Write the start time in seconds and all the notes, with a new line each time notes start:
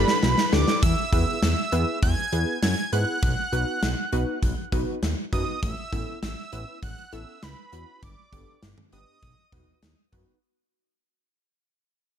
Already playing: D4 G4 A4 D5 B5
0.08 snare
0.23 B1, snare
0.38 snare
0.53 D2 D4 G4 A4 B4 D6, snare
0.68 snare
0.83 E2 E6, kick, closed hi-hat
1.13 E2 B3 E4 G#4 B4 E6, kick, closed hi-hat
1.43 E2 E6, snare, closed hi-hat
1.72 E2 B3 E4 G#4 B4, closed hi-hat, cowbell
2.03 E2 G#6, kick, closed hi-hat
2.32 E2 B3 E4 G#4 B4, closed hi-hat
2.62 F#2 G#6, snare, closed hi-hat
2.93 G#2 B3 E4 G#4 B4 F#6, closed hi-hat
3.23 B1, kick, closed hi-hat
3.53 B1 B3 D#4 F#4 B4, closed hi-hat
3.83 B1, snare, closed hi-hat
4.12 B1 B3 D#4 F#4 B4, closed hi-hat
4.43 B1, kick, closed hi-hat
4.72 B1 B3 D#4 F#4 B4, kick, closed hi-hat
5.03 D#2, snare, closed hi-hat
5.33 F#2 B3 D#4 F#4 B4 D#6, kick, closed hi-hat
5.63 A1 E6, kick, closed hi-hat
5.93 A1 B3 C#4 E4 A4, kick, closed hi-hat
6.23 A1 E6, snare, closed hi-hat
6.53 A1 B3 C#4 E4 B4, closed hi-hat
6.83 A1 F#6, kick, closed hi-hat
7.12 A1 B3 C#4 E4 A4 E6, closed hi-hat
7.43 C#2 B5, snare, closed hi-hat
7.73 E2 B3 C#4 E4 F#4, closed hi-hat
8.03 G1 D6, kick, closed hi-hat
8.33 G1 B3 D4 G4 A4, kick, closed hi-hat
8.63 G1, snare, closed hi-hat
8.78 mid tom
8.92 G1 B3 D4 G4 B4 D#6, closed hi-hat
9.23 B1, kick, closed hi-hat
9.52 B1 B3 D#4 F#4 B4, kick, closed hi-hat, mid tom
9.83 D#2, snare, closed hi-hat
10.12 F#2 B3 D#4 F#4 B4, kick, closed hi-hat, cowbell